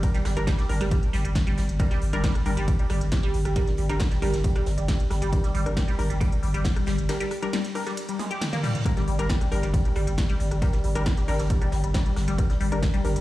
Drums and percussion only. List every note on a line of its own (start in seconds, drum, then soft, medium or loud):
0.03 kick loud
0.03 closed hi-hat medium
0.03 ride medium
0.14 snare soft
0.14 closed hi-hat medium
0.25 cross-stick medium
0.25 snare loud
0.25 closed hi-hat medium
0.25 open hi-hat loud
0.37 closed hi-hat medium
0.47 kick loud
0.47 snare loud
0.47 closed hi-hat medium
0.47 ride medium
0.58 snare medium
0.58 closed hi-hat medium
0.69 open hi-hat loud
0.69 open hi-hat medium
0.80 cross-stick medium
0.80 snare medium
0.80 closed hi-hat medium
0.91 kick loud
0.91 closed hi-hat loud
0.91 closed hi-hat medium
0.91 ride medium
1.03 closed hi-hat medium
1.13 snare medium
1.13 closed hi-hat medium
1.13 open hi-hat loud
1.25 closed hi-hat medium
1.35 kick loud
1.35 cross-stick medium
1.35 snare loud
1.35 closed hi-hat medium
1.35 ride medium
1.47 closed hi-hat medium
1.58 snare medium
1.58 closed hi-hat medium
1.58 open hi-hat loud
1.69 closed hi-hat soft
1.69 closed hi-hat medium
1.79 kick loud
1.79 cross-stick medium
1.79 closed hi-hat medium
1.79 ride medium
1.91 snare soft
1.91 closed hi-hat medium
2.02 closed hi-hat medium
2.02 open hi-hat loud
2.13 closed hi-hat medium
2.24 kick loud
2.24 snare loud
2.24 closed hi-hat medium
2.24 ride medium
2.35 cross-stick medium
2.35 closed hi-hat medium
2.46 closed hi-hat medium
2.46 open hi-hat loud
2.57 closed hi-hat medium
2.57 closed hi-hat soft
2.68 kick loud
2.68 closed hi-hat medium
2.68 ride medium
2.79 closed hi-hat medium
2.90 cross-stick medium
2.90 closed hi-hat medium
2.90 open hi-hat loud
3.01 closed hi-hat medium
3.01 closed hi-hat soft
3.12 kick loud
3.12 snare loud
3.12 closed hi-hat medium
3.12 ride medium
3.23 closed hi-hat soft
3.34 closed hi-hat medium
3.34 open hi-hat loud
3.45 cross-stick medium
3.45 closed hi-hat medium
3.45 closed hi-hat soft
3.56 kick loud
3.56 closed hi-hat medium
3.56 ride medium
3.67 snare soft
3.67 closed hi-hat medium
3.77 closed hi-hat medium
3.77 open hi-hat loud
3.90 closed hi-hat medium
4.00 kick loud
4.00 cross-stick medium
4.00 snare loud
4.00 closed hi-hat medium
4.00 ride medium
4.11 snare soft
4.11 closed hi-hat soft
4.22 open hi-hat medium
4.22 open hi-hat loud
4.34 snare medium
4.34 closed hi-hat medium
4.44 kick loud
4.44 closed hi-hat medium
4.44 ride medium
4.56 cross-stick medium
4.56 closed hi-hat medium
4.66 snare medium
4.66 closed hi-hat medium
4.66 open hi-hat loud
4.78 closed hi-hat medium
4.88 kick loud
4.88 snare loud
4.88 closed hi-hat medium
4.88 ride medium
5.00 closed hi-hat medium
5.11 cross-stick medium
5.11 snare medium
5.11 closed hi-hat medium
5.11 open hi-hat loud
5.22 closed hi-hat soft
5.22 closed hi-hat medium
5.32 kick loud
5.32 closed hi-hat loud
5.32 closed hi-hat medium
5.32 ride medium
5.44 snare soft
5.44 closed hi-hat medium
5.55 closed hi-hat medium
5.55 open hi-hat loud
5.66 cross-stick medium
5.66 closed hi-hat medium
5.76 kick loud
5.76 snare loud
5.76 closed hi-hat medium
5.76 ride medium
5.88 closed hi-hat medium
5.99 closed hi-hat medium
5.99 open hi-hat loud
6.10 closed hi-hat soft
6.10 closed hi-hat medium
6.21 kick loud
6.21 cross-stick medium
6.21 closed hi-hat medium
6.21 closed hi-hat loud
6.21 ride medium
6.32 closed hi-hat medium
6.43 closed hi-hat medium
6.43 open hi-hat loud
6.54 closed hi-hat medium
6.54 closed hi-hat soft
6.64 kick loud
6.64 snare loud
6.64 closed hi-hat medium
6.64 ride medium
6.76 cross-stick medium
6.76 closed hi-hat medium
6.86 snare loud
6.86 closed hi-hat medium
6.86 open hi-hat loud
6.98 closed hi-hat soft
6.98 closed hi-hat medium
7.09 snare loud
7.09 closed hi-hat medium
7.09 ride medium
7.21 snare soft
7.21 closed hi-hat medium
7.31 cross-stick medium
7.31 closed hi-hat medium
7.31 open hi-hat loud
7.43 closed hi-hat medium
7.53 snare loud
7.53 closed hi-hat medium
7.53 ride medium
7.65 snare soft
7.65 closed hi-hat medium
7.75 open hi-hat loud
7.75 open hi-hat medium
7.86 cross-stick medium
7.86 snare medium
7.86 closed hi-hat medium
7.97 closed hi-hat medium
7.97 closed hi-hat loud
7.97 ride medium
8.09 closed hi-hat medium
8.19 snare medium
8.19 closed hi-hat medium
8.19 open hi-hat loud
8.19 high tom medium
8.31 closed hi-hat medium
8.41 cross-stick medium
8.41 snare loud
8.41 closed hi-hat medium
8.41 mid tom medium
8.41 ride medium
8.53 snare loud
8.53 closed hi-hat medium
8.53 mid tom medium
8.63 snare medium
8.63 closed hi-hat medium
8.63 mid tom medium
8.63 open hi-hat loud
8.74 closed hi-hat soft
8.74 closed hi-hat medium
8.74 mid tom medium
8.85 kick loud
8.85 cross-stick medium
8.85 closed hi-hat loud
8.85 closed hi-hat medium
8.85 ride medium
8.97 snare soft
8.97 closed hi-hat medium
9.07 closed hi-hat medium
9.07 open hi-hat loud
9.19 closed hi-hat medium
9.29 kick loud
9.29 snare loud
9.29 closed hi-hat medium
9.29 ride medium
9.41 cross-stick medium
9.41 closed hi-hat medium
9.52 closed hi-hat medium
9.52 open hi-hat loud
9.62 closed hi-hat soft
9.62 closed hi-hat medium
9.74 kick loud
9.74 closed hi-hat medium
9.74 ride medium
9.85 closed hi-hat medium
9.95 cross-stick medium
9.95 closed hi-hat medium
9.95 open hi-hat loud
10.07 closed hi-hat soft
10.07 closed hi-hat medium
10.18 kick loud
10.18 snare loud
10.18 closed hi-hat medium
10.18 ride medium
10.29 closed hi-hat medium
10.40 closed hi-hat medium
10.40 open hi-hat loud
10.51 cross-stick medium
10.51 closed hi-hat soft
10.51 closed hi-hat medium
10.62 kick loud
10.62 closed hi-hat medium
10.62 closed hi-hat loud
10.62 ride medium
10.73 snare soft
10.73 closed hi-hat medium
10.84 closed hi-hat medium
10.84 open hi-hat loud
10.95 closed hi-hat medium
11.06 kick loud
11.06 cross-stick medium
11.06 snare loud
11.06 closed hi-hat medium
11.06 ride medium
11.17 snare medium
11.17 closed hi-hat medium
11.28 open hi-hat loud
11.28 open hi-hat medium
11.39 snare medium
11.39 closed hi-hat medium
11.50 kick loud
11.50 closed hi-hat medium
11.50 ride medium
11.62 cross-stick medium
11.62 closed hi-hat medium
11.72 snare medium
11.72 closed hi-hat medium
11.72 open hi-hat loud
11.84 closed hi-hat medium
11.94 kick loud
11.94 snare loud
11.94 closed hi-hat medium
11.94 ride medium
12.06 closed hi-hat medium
12.16 cross-stick medium
12.16 snare medium
12.16 closed hi-hat medium
12.16 open hi-hat loud
12.28 closed hi-hat soft
12.28 closed hi-hat medium
12.38 kick loud
12.38 closed hi-hat medium
12.38 ride medium
12.50 snare soft
12.50 closed hi-hat medium
12.60 closed hi-hat medium
12.60 open hi-hat loud
12.72 cross-stick medium
12.72 closed hi-hat medium
12.83 kick loud
12.83 snare loud
12.83 closed hi-hat medium
12.83 ride medium
12.94 closed hi-hat medium
13.05 closed hi-hat medium
13.05 open hi-hat loud
13.16 closed hi-hat soft
13.16 closed hi-hat medium